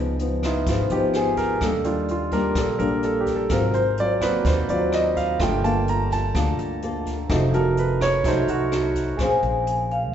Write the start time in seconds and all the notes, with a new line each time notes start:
Already playing: C#2 C#3 F3 B3 D#4
0.19 F3 B3 D#4, closed hi-hat
0.43 B3 D#4 E4 F4, kick, cross-stick, closed hi-hat
0.66 G#1 G#2 F4, kick, closed hi-hat
0.90 G#1 F3 B3 D#4 G4, closed hi-hat
1.13 G#4, cross-stick, closed hi-hat
1.37 A#4, kick, closed hi-hat
1.61 D#2 D#3 G3 A#3 D4 A4, kick, cross-stick, closed hi-hat
1.84 G3 D4 F4, closed hi-hat
2.08 F4, closed hi-hat
2.32 G3 A#3 D4 A#4, kick, closed hi-hat
2.55 A#1 A#2 A4, kick, cross-stick, closed hi-hat
2.79 A#1 G3 A#3 D4 A#4, closed hi-hat
3.03 A4, closed hi-hat
3.21 G4
3.26 kick, closed hi-hat
3.36 A4
3.50 G#1 G#2 F#3 C4 F4 A#4, kick, cross-stick, closed hi-hat
3.73 C5, closed hi-hat
3.97 F#3 C4 F4 D5, closed hi-hat
4.21 F#3 A#3 C4 F4 B4, kick, cross-stick, closed hi-hat
4.45 D#2 D#3 C5, kick, closed hi-hat
4.69 D#2 F#3 C4 F4 D5, closed hi-hat
4.92 D#5, cross-stick, closed hi-hat
5.16 F5, kick, closed hi-hat
5.40 G1 G3 A3 A#3 F4 A4 G5, kick, cross-stick, closed hi-hat
5.64 A#3 F4 A4 A5, closed hi-hat
5.88 A#5, closed hi-hat
6.11 A5, kick, closed hi-hat
6.35 D2 D3 A#3 F4 A4, kick, cross-stick, closed hi-hat
6.59 D2, closed hi-hat
6.82 A#3 F4 A4, closed hi-hat
7.06 kick, closed hi-hat
7.29 F1 F3 A3 D#4 F#4 A4, kick, cross-stick, closed hi-hat
7.53 D#4 F#4 A4 A#4, closed hi-hat
7.77 B4, closed hi-hat
8.01 C#5, kick, cross-stick, closed hi-hat
8.24 C2 C3 F#3 A3 D#4 F#4 A4 C5, kick, closed hi-hat
8.48 C2 F#4, closed hi-hat
8.72 D#4 F#4 A4, cross-stick, closed hi-hat
8.95 kick, closed hi-hat
9.17 A#1 A#3 C#4 G#4 C5, kick, cross-stick, closed hi-hat
9.23 F5 G#5
9.43 A#1, closed hi-hat
9.67 closed hi-hat
9.91 F5, closed hi-hat